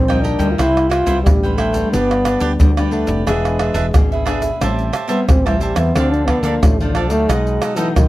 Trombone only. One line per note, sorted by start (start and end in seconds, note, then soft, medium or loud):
0.00 0.22 C4 medium
0.21 0.50 D4 medium
0.51 0.58 F4 medium
0.56 0.91 E4 loud
0.89 1.22 F4 loud
1.23 1.57 G3 medium
1.56 1.91 A3 medium
1.91 2.62 B3 medium
2.91 3.23 A3 medium
3.26 4.23 G#3 medium
5.08 5.30 B3 medium
5.28 5.48 C4 medium
5.46 5.62 E3 medium
5.61 5.77 G3 medium
5.76 5.96 B3 medium
5.95 6.14 C4 medium
6.12 6.27 D4 medium
6.26 6.43 B3 medium
6.41 6.64 A#3 medium
6.62 6.81 A3 medium
6.79 6.96 D3 medium
6.94 7.10 F3 medium
7.09 7.30 A3 loud
7.29 7.77 G#3 medium
7.76 7.94 E3 medium
7.95 8.08 D#3 medium